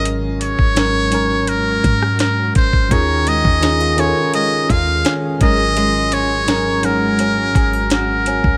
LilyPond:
<<
  \new Staff \with { instrumentName = "Muted trumpet" } { \time 4/4 \key aes \dorian \tempo 4 = 84 r8 des''4. bes'4 bes'8 c''8 | des''8 ees''4 des''8 ees''8 f''8 r8 ees''8~ | ees''8 des''4 bes'4. bes'4 | }
  \new Staff \with { instrumentName = "Ambient pad" } { \time 4/4 \key aes \dorian << { ges'1 | <ees f' aes'>2.~ <ees f' aes'>8 ges'8~ | ges'1 | } \\ { <aes des'>1~ | <aes des'>2.~ <aes des'>8 aes8~ | aes1 | } >> }
  \new Staff \with { instrumentName = "Nylon-string guitar" } { \time 4/4 \key aes \dorian r1 | ees8 aes8 ees'16 f'16 des'8 aes8 f'8 des'8 aes8 | aes8 des'8 bes'8 ges'8 des'8 aes'16 bes'16 ges'8 des'8 | }
  \new Staff \with { instrumentName = "Tine electric piano" } { \time 4/4 \key aes \dorian <aes, ges des' bes'>4 <aes, ges des' bes'>8 <aes, ges des' bes'>2 r8 | <ees des' f' aes'>4 <ees des' f' aes'>8 <ees des' f' a' bes'>2 <aes, ges des' bes'>8~ | <aes, ges des' bes'>4 <aes, ges des' bes'>8 <aes, ges des' bes'>2 r8 | }
  \new Staff \with { instrumentName = "808-style bass" } { \clef bass \time 4/4 \key aes \dorian aes,,8. aes,,4.~ aes,,16 aes,4 aes,,16 aes,,16 | ees,8. ees,4 r8. ees,8 r8 aes,,8~ | aes,,2~ aes,,8 aes,,4~ aes,,16 c,16 | }
  \new DrumStaff \with { instrumentName = "Drums" } \drummode { \time 4/4 hh8 hh16 bd16 <hh sn>8 hh8 hh8 <hh bd>16 ss16 <hh sn>8 <hh bd>16 bd16 | <hh bd>8 hh16 bd16 <hh sn>8 hh8 hh8 <hh bd>8 <hh sn>8 <hh bd>8 | hh8 hh8 <hh sn>8 hh8 hh8 <hh bd>8 <hh sn>8 hh16 bd16 | }
>>